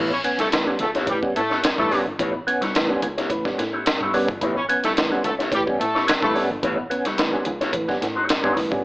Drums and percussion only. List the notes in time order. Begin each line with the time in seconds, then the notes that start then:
0.24 closed hi-hat
0.39 snare, closed hi-hat
0.52 snare, closed hi-hat
0.79 closed hi-hat
0.95 snare, closed hi-hat
1.07 kick, closed hi-hat
1.23 kick
1.36 closed hi-hat
1.51 snare
1.64 snare, closed hi-hat
1.78 kick
1.92 snare, open hi-hat
2.19 kick, closed hi-hat
2.48 closed hi-hat
2.62 snare, closed hi-hat
2.75 snare, closed hi-hat
3.02 closed hi-hat
3.18 snare, closed hi-hat
3.30 kick, closed hi-hat
3.45 kick, snare
3.59 snare, closed hi-hat
3.86 snare, closed hi-hat
4.01 kick
4.14 snare, open hi-hat
4.29 kick
4.41 kick, closed hi-hat
4.70 closed hi-hat
4.84 snare, closed hi-hat
4.97 snare, closed hi-hat
5.24 closed hi-hat
5.40 snare, closed hi-hat
5.52 kick, closed hi-hat
5.67 kick
5.81 closed hi-hat
5.96 snare
6.08 snare, closed hi-hat
6.22 kick
6.36 snare, open hi-hat
6.63 kick, closed hi-hat
6.91 closed hi-hat
7.05 snare, closed hi-hat
7.18 snare, closed hi-hat
7.45 closed hi-hat
7.61 snare, closed hi-hat
7.73 kick, closed hi-hat
7.89 kick, snare
8.02 snare, closed hi-hat
8.29 snare, closed hi-hat
8.44 kick
8.57 kick, snare, open hi-hat
8.72 kick